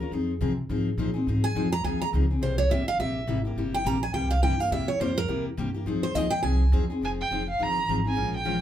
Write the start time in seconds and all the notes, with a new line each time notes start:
Already playing: D#2
0.00 C#4 F4 A#4
0.11 F2 F3 C4 D#4 G#4
0.41 C3 F3 C4 D#4 G#4
0.69 G#2 F3 C4 D#4 G#4
0.97 A#2 F3 C4 D#4 G#4
1.14 C4 D#4 G#4
1.27 G#2 F3 C4 D#4 G#4
1.44 G#5
1.55 F2 F3 C4 D#4 G#4
1.72 A#5
1.84 D#2 F3 C4 D#4 G#4 G#5
2.02 A#5
2.13 C#2 F3 C4 D#4 G#4
2.30 C4 D#4 G#4
2.41 C2 C3 G3 A#3 E4 G4 C5
2.58 C#5
2.70 G1 C3 G3 A#3 E4 G4 E5
2.88 F5
2.99 A#1 C3 G3 A#3 E4 G4 E5
3.27 G#1 C3 G3 A#3 E4 G4
3.45 A#3 E4 G4
3.56 G1 C3 G3 A#3 E4 G4
3.74 G5
3.85 A#1 C3 G3 A#3 E4 G4 A#5
4.03 G#5
4.13 C2 C3 G3 A#3 E4 G4 G5
4.31 F5
4.42 G2 C3 G3 A#3 E4 G4 G5
4.59 A#3 E4 G4 F5
4.71 E2 C3 G3 A#3 E4 G4 E5
4.88 C#5
5.00 F2 C3 G3 A#3 E4 G4 C5
5.18 A#4
5.28 E2 C3 G3 A#3 E4 G4
5.57 G2 C3 G3 A#3 E4 G4
5.74 A#3 E4 G4
5.86 F2 F3 C4 D#4 G#4
6.03 C5
6.14 D#2 F3 C4 D#4 G#4 D#5
6.30 G5
6.43 C2 F3 C4 D#4 G#4 G#5
6.72 E2 F3 C4 D#4 G#4
6.90 C4 D#4 G#4
7.01 F1 F3 C4 D#4 G#4 G#5
7.21 G5
7.30 F1 F3 C4 D#4 G#4
7.50 F5
7.59 G1 F3 C4 D#4 G#4 A#5
7.88 G#1 F3 C4 D#4 G#4
8.04 C4 D#4 G#4
8.08 G#5
8.16 A#1 F3 G#3 C#4 F4 A#4
8.37 G5
8.45 F3 G#3 C#4 F4 A#4